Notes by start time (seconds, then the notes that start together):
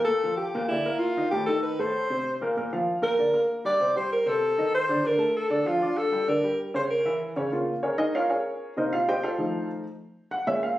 0.05 A#2 A#3 A4 A#4
0.24 F3 F4 F5
0.37 G4
0.55 A#2 A#3 A#4
0.68 D3 D4 E4 D5
0.86 A#3 A#4 A#5
0.99 F4
1.17 D#3 D#4 D#5
1.31 A2 A3 G4 A4
1.46 D#3 D#4 A4 D#5
1.63 B4
1.79 A2 A3 A4 C5
2.10 C3 C4 C5
2.41 A#2 A#3 A#4
2.57 A#2 A#3 A#4
2.72 F3 F4 F5
3.02 A#2 A#3 A#4
3.19 D3 D4 D5
3.33 A#3 A#4 A#5
3.65 G3 G4 D5 G5
3.80 C3 C4 C5
3.95 G3 G4 C5 G5
4.12 A#4
4.26 C3 C4 A4 C5
4.58 D#3 D#4 D#5
4.75 C5
4.89 D3 D4 D5
5.04 D3 D4 A#4 D5
5.18 A3 A4 A5
5.37 A4
5.50 D3 D4 D5
5.66 F3 F4 F5
5.81 D4 D5 D6
5.97 A4
6.12 G3 G4 G5
6.28 D3 D4 A#4 D5
6.43 G3 G4 G5
6.74 C#3 C#4 C5 C#5
6.90 A#4
7.05 E3 E4 E5
7.36 C#3 C#4 C#5
7.51 C#3 A#3 F4
7.83 C#4 G#4 A#4 C#5
7.98 D#4 G#4 A#4 D#5
8.15 F4 A#4 C#5 F5
8.30 C#4 G#4 A#4 C#5
8.77 C3 A#3 D#4 A#4 C5 D#5
8.93 F4 F5
9.09 G4 C5 D#5 G5
9.23 F4 A4 C5 F5
9.38 F3 A3 D#4
10.31 F#5
10.47 A#2 G#3 C#4 E5
10.63 F5